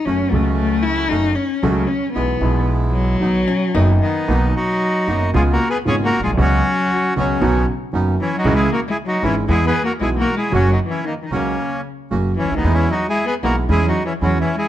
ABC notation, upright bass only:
X:1
M:4/4
L:1/16
Q:1/4=115
K:Bmix
V:1 name="Upright bass" clef=bass
F,,,3/2 z/2 C,,4- C,,3/2 z/2 F,,,3/2 z2 z/2 C,,3/2 z2 z/2 | B,,,3/2 z/2 B,,,4- B,,,3/2 z/2 B,,,3/2 z2 z/2 F,,,3/2 z2 z/2 | [K:B] B,,,3/2 z4 z/2 F,,,3/2 z/2 C,,3/2 z2 z/2 G,,,3/2 z A,,,/2 B,,,/2 =C,,/2 | C,,3/2 z4 z/2 C,,3/2 z/2 B,,,3/2 z2 z/2 F,,,3/2 z2 z/2 |
C,,3/2 z4 z/2 G,,,3/2 z/2 E,,3/2 z2 z/2 B,,,3/2 z2 z/2 | F,,,3/2 z4 z/2 C,,3/2 z4 z/2 F,,,3/2 z C,,/2 =D,,/2 ^D,,/2 | E,,3/2 z4 z/2 B,,,3/2 z/2 E,,3/2 z2 z/2 E,,3/2 z2 z/2 |]